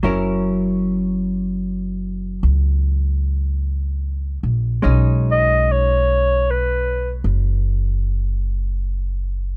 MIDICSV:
0, 0, Header, 1, 4, 480
1, 0, Start_track
1, 0, Tempo, 1197605
1, 15, Time_signature, 4, 2, 24, 8
1, 3835, End_track
2, 0, Start_track
2, 0, Title_t, "Clarinet"
2, 0, Program_c, 0, 71
2, 2131, Note_on_c, 0, 75, 87
2, 2292, Note_on_c, 0, 73, 75
2, 2298, Note_off_c, 0, 75, 0
2, 2606, Note_on_c, 0, 71, 70
2, 2612, Note_off_c, 0, 73, 0
2, 2857, Note_off_c, 0, 71, 0
2, 3835, End_track
3, 0, Start_track
3, 0, Title_t, "Hollow-body jazz guitar"
3, 0, Program_c, 1, 26
3, 12, Note_on_c, 1, 54, 37
3, 16, Note_on_c, 1, 61, 40
3, 17, Note_on_c, 1, 64, 42
3, 20, Note_on_c, 1, 70, 44
3, 1932, Note_off_c, 1, 54, 0
3, 1932, Note_off_c, 1, 61, 0
3, 1933, Note_on_c, 1, 56, 38
3, 1937, Note_off_c, 1, 64, 0
3, 1937, Note_on_c, 1, 61, 38
3, 1939, Note_on_c, 1, 63, 41
3, 1942, Note_off_c, 1, 70, 0
3, 3835, Note_off_c, 1, 56, 0
3, 3835, Note_off_c, 1, 61, 0
3, 3835, Note_off_c, 1, 63, 0
3, 3835, End_track
4, 0, Start_track
4, 0, Title_t, "Upright bass"
4, 0, Program_c, 2, 32
4, 12, Note_on_c, 2, 30, 64
4, 957, Note_off_c, 2, 30, 0
4, 974, Note_on_c, 2, 37, 72
4, 1760, Note_off_c, 2, 37, 0
4, 1777, Note_on_c, 2, 34, 63
4, 1928, Note_off_c, 2, 34, 0
4, 1943, Note_on_c, 2, 35, 71
4, 2884, Note_off_c, 2, 35, 0
4, 2903, Note_on_c, 2, 30, 73
4, 3835, Note_off_c, 2, 30, 0
4, 3835, End_track
0, 0, End_of_file